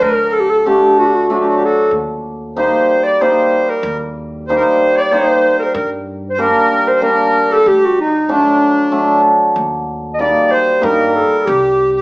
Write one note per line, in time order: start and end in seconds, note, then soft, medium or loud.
0.00 0.78 D2 medium
0.00 0.70 F#3 medium
0.00 0.34 A#4 medium
0.30 0.65 A4 medium
0.30 0.42 A4 medium
0.40 0.51 G4 medium
0.50 0.59 A4 medium
0.59 0.69 A4 medium
0.65 1.98 D3 medium
0.65 0.98 A3 medium
0.65 0.98 D4 medium
0.65 0.98 G4 medium
0.97 1.27 F#4 medium
0.97 1.08 F#4 medium
1.06 1.17 G4 medium
1.15 1.31 F#4 medium
1.28 1.98 F#3 medium
1.28 1.61 A3 medium
1.28 1.62 D4 medium
1.28 1.37 F#4 soft
1.33 1.67 F#4 medium
1.40 1.47 G4 soft
1.48 1.55 F#4 soft
1.55 1.63 G4 medium
1.64 1.92 F#4 medium
1.64 1.95 A4 medium
1.91 2.68 D#2 medium
2.56 3.20 G3 medium
2.56 2.88 A#3 medium
2.56 2.88 D#4 medium
2.56 3.05 C5 medium
2.56 3.06 C5 medium
3.04 3.23 D5 medium
3.04 3.19 D5 medium
3.20 4.49 G3 medium
3.20 3.53 A#3 medium
3.20 3.52 D#4 medium
3.20 3.69 C5 medium
3.20 3.71 C5 medium
3.68 3.98 A#4 medium
3.68 4.01 A#4 medium
3.83 4.60 D#2 loud
4.47 5.11 G3 medium
4.47 4.80 A#3 medium
4.47 4.81 D#4 medium
4.47 4.55 C5 medium
4.47 4.98 C5 medium
4.56 4.63 A#4 medium
4.61 4.96 C5 medium
4.97 5.14 D5 medium
4.97 5.12 D5 medium
5.11 5.80 G3 medium
5.11 5.43 A#3 medium
5.11 5.44 D#4 medium
5.11 5.61 C5 medium
5.11 5.58 C5 medium
5.59 5.66 A#4 medium
5.59 5.73 A#4 medium
5.65 5.76 C5 medium
5.74 6.51 G2 loud
5.74 5.91 A#4 medium
5.74 5.90 A#4 medium
6.30 6.40 C5 medium
6.38 7.00 G3 medium
6.38 6.71 A#3 medium
6.38 6.71 D4 medium
6.38 6.89 A#4 medium
6.38 6.98 A#4 medium
6.88 7.02 C5 medium
6.96 7.03 C5 medium
7.02 7.72 G3 medium
7.02 7.34 A#3 medium
7.02 7.34 D4 medium
7.02 7.54 A#4 medium
7.02 7.52 A#4 medium
7.50 7.57 G4 medium
7.50 7.54 A4 medium
7.50 7.69 A4 loud
7.57 7.66 A4 medium
7.66 8.43 D2 medium
7.66 7.99 G4 medium
7.66 7.87 G4 medium
7.85 8.00 F#4 medium
7.99 8.32 D#4 medium
7.99 8.26 D#4 medium
8.26 8.91 F#3 medium
8.26 8.62 A3 medium
8.26 9.21 D4 medium
8.26 8.62 D4 medium
8.26 8.35 D#4 soft
8.33 9.27 D4 medium
8.92 9.62 F#3 medium
8.92 9.25 A3 medium
8.92 9.25 D4 medium
9.56 10.32 D#2 medium
10.14 10.22 D#5 medium
10.19 10.81 G3 medium
10.19 10.52 A#3 medium
10.19 10.52 D#4 medium
10.19 10.45 D5 medium
10.19 10.53 D5 medium
10.47 10.53 D5 medium
10.51 10.86 C5 medium
10.51 10.82 C5 loud
10.81 11.21 G2 medium
10.81 11.53 G3 medium
10.81 11.14 A#3 medium
10.81 11.15 D#4 medium
10.81 11.49 A#4 medium
10.81 11.07 A#4 medium
11.07 11.16 A#4 medium
11.15 11.38 A4 medium
11.38 11.47 A4 medium
11.46 12.02 C2 loud
11.46 12.02 G4 medium
11.46 11.91 G4 medium
11.96 12.02 G4 medium